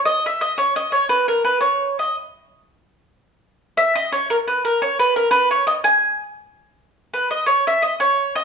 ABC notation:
X:1
M:6/8
L:1/8
Q:3/8=114
K:C#dor
V:1 name="Mandolin"
d e d c d c | B A B c2 d | z6 | z3 e d c |
A B A c B A | B c d g2 z | z4 B d | c e d c2 d |]